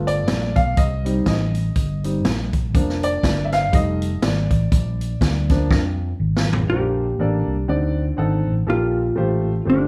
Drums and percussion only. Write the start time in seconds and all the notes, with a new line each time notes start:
0.08 closed hi-hat
0.28 snare, closed hi-hat
0.56 kick, closed hi-hat
0.77 kick, closed hi-hat
1.06 closed hi-hat
1.26 kick, snare, closed hi-hat
1.55 closed hi-hat
1.76 kick, closed hi-hat
2.04 closed hi-hat
2.25 snare, closed hi-hat
2.53 kick, closed hi-hat
2.75 kick, closed hi-hat
2.89 snare
3.03 closed hi-hat
3.23 kick, snare, closed hi-hat
3.52 snare, closed hi-hat
3.73 kick, closed hi-hat
4.02 closed hi-hat
4.22 snare, closed hi-hat
4.51 kick, closed hi-hat
4.72 kick, closed hi-hat
5.01 closed hi-hat
5.21 kick, snare, closed hi-hat
5.49 kick, snare, closed hi-hat
5.71 kick, snare
6.37 snare
6.53 floor tom